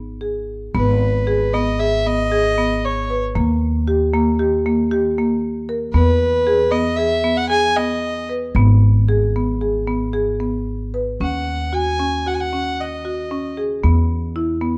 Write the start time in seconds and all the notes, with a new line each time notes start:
Already playing: G#1
0.21 G#4
0.75 G#1 B3 B4
1.27 G#4
1.53 B3 D#5
1.79 G#4 E5
2.06 B3 D#5
2.32 G#4
2.58 B3
2.84 C#5
3.10 B4
3.35 D#2 A#3
3.88 G4
4.14 A#3
4.39 G4
4.66 A#3
4.91 G4
5.18 A#3
5.69 A#4
5.93 E2 B3 B4
6.47 G#4
6.71 B3 D#5
6.97 G#4 E5
7.24 B3
7.37 F#5
7.49 G#4 G#5
7.76 B3 D#5
8.29 B4
8.55 G#1 B3
9.09 G#4
9.36 B3
9.61 G#4
9.87 B3
10.13 G#4
10.40 B3
10.94 B4
11.20 D#2 C#4 F#5
11.73 F#4 G#5
11.99 C#4
12.27 F#4 F#5
12.34 G#5
12.41 F#5
12.53 C#4
12.80 D#5
13.05 F#4
13.31 C#4
13.57 G#4
13.84 E2 B3
14.36 E4
14.62 B3